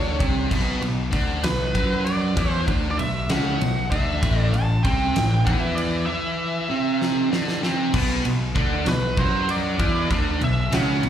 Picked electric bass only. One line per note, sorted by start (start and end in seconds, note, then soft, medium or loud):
0.00 0.18 D2 medium
0.20 0.49 C2 loud
0.51 0.80 B1 medium
0.81 1.10 B1 medium
1.13 1.42 D2 loud
1.44 1.73 B1 medium
1.75 2.33 F#2 loud
2.37 2.66 E2 loud
2.68 2.97 D2 medium
2.99 3.28 B1 medium
3.30 3.59 C#2 medium
3.61 3.89 B1 medium
3.92 4.21 D2 loud
4.23 4.51 A1 medium
4.53 4.82 A1 medium
4.84 5.13 C2 loud
5.15 5.44 A1 medium
5.47 6.05 E2 medium
7.94 8.23 B1 medium
8.25 8.54 B1 medium
8.56 8.85 D2 loud
8.87 9.16 B1 medium
9.18 9.76 F#2 medium
9.79 10.08 E2 medium
10.11 10.40 D2 medium
10.41 10.70 B1 medium
10.72 11.01 C#2 medium
11.03 11.09 B1 medium